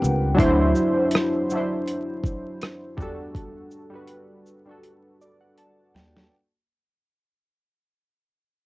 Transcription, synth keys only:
Already playing: G3 C4 D4 A#4 B4 F#5
0.35 F#3 D4 E4
0.40 C5
1.52 F#3 D4 E4
1.57 C5
2.97 G3 D4 F#4
3.02 A4
3.90 G3 D4 F#4
3.95 B4
4.65 G3 D4 F#4
4.71 A4
5.21 D5
5.40 F#5
5.58 A5
5.95 G5

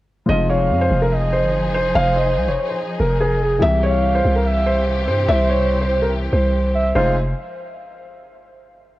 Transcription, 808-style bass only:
0.29 F1
0.70 F2
0.91 F1
1.44 G1
1.70 F1
1.95 F1
2.37 C2
2.48 F1
2.99 F1
3.62 C2
4.24 C2
5.08 G2
5.29 C2
6.33 C2
6.95 F1

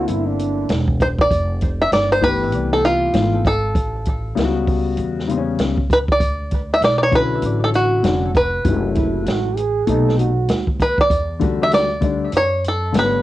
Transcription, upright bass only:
0.09 G1
0.70 E1
1.31 F1
1.92 G1
2.53 C2
3.14 G#1
3.75 A1
4.37 C#2
4.98 E2
5.59 C#2
6.20 D2
6.81 B1
7.42 A1
8.04 F1
8.65 F#1
9.26 A1
9.87 B1
10.48 D#2
11.10 E2
11.72 D2
12.33 F#2
12.94 G#1

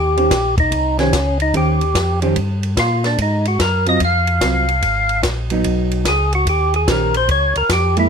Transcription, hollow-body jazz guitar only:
0.17 D#3 C#4 G4 C5
0.98 D#3 C#4 G4 C5
1.54 D#3 C#4 G4 C5
2.22 D#3 C#4 G4 C5
3.86 F#3 C4 F4
4.41 F#3 C4 F4
5.51 F#3 B3 D#4
6.88 D#3 C#4 G4 C5
7.97 G#3 A#3 E4

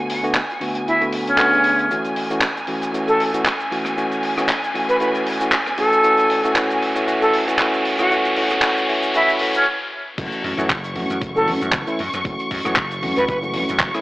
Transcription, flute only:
0.87 E4
1.27 C#4
3.08 A4
4.89 B4
5.01 B4
5.78 A4
7.21 A4
7.99 F#4
9.15 E4
9.55 C#4
11.36 A4
13.17 B4
13.28 B4

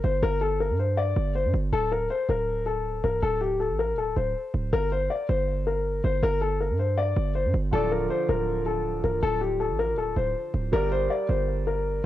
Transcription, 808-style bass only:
0.04 G1
0.23 G1
0.70 G2
1.16 G1
1.45 G2
1.54 G1
1.73 D1
2.29 D1
3.04 C1
3.23 D1
3.70 A1
3.93 D1
4.16 D1
4.54 D1
4.73 G1
5.29 G1
6.04 G1
6.23 G1
6.70 G2
7.17 G1
7.45 G2
7.54 G1
7.73 D1
8.29 D1
9.04 C1
9.23 D1
9.70 A1
9.93 D1
10.16 D1
10.54 D1
10.73 G1
11.29 G1

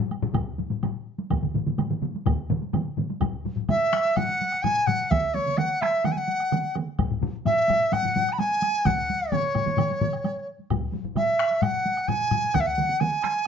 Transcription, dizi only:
3.69 E5
4.16 F#5
4.63 G#5
4.87 F#5
5.11 E5
5.34 C#5
5.58 F#5
5.81 E5
6.05 F#5
6.12 G#5
6.17 F#5
7.46 E5
7.92 F#5
8.33 B5
8.39 G#5
8.86 F#5
9.32 C#5
11.17 E5
11.62 F#5
12.08 G#5
12.54 F#5
12.60 E5
12.67 F#5
13.00 G#5

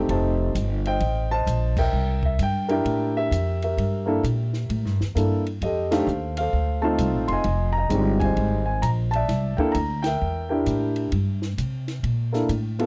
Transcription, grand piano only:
Already playing: A3 C4 D#4 G4
0.10 C5 D#5 A5
0.87 C5 D#5 G5
1.31 C5 D#5 A5
1.78 A#4 E5 G5
2.25 E5
2.43 G5
2.69 D4 E4 G4 A#4 E5 G5
3.17 G4 A#4 E5
3.64 G4 A#4 E5
4.06 A#3 D4 E4 A4
5.15 A#3 D4 E4 A4
5.63 G4 A4 D#5
5.91 A3 D4 D#4 G4 A4 C5 F5
6.38 A4 C5 F5
6.82 A3 C4 D#4 F4 A5
6.86 C5 D#5
7.28 C6
7.32 D#5 G#5
7.72 A#5
7.78 D#5
7.89 G3 G#3 C4 D#4
8.20 G#5
8.24 C5 D#5
8.66 G#5
8.82 A#5
9.11 A5
9.16 D5 E5
9.57 A#3 D4 E4 A4 G5
9.72 A#5
10.02 A#4 G5
10.07 E5
10.49 D4 E4 G4 A#4 G5
10.53 E5
12.32 A#3 D4 E4 A4
12.79 B3 E4 F4 A4

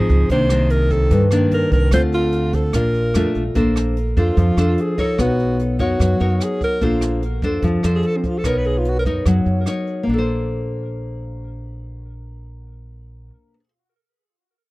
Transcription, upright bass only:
0.09 C#2
0.30 C2
1.11 G2
1.51 G2
1.71 C2
1.92 D2
2.73 A#1
3.15 F2
3.35 A#1
3.55 A#1
4.17 F2
4.37 F2
4.57 F2
5.18 B1
5.79 F#2
6.00 F#2
6.21 F#2
6.81 A#1
7.42 F2
7.63 F2
7.84 F2
8.44 B1
9.05 F#2
9.26 F#2
9.46 F#2
10.07 A#1

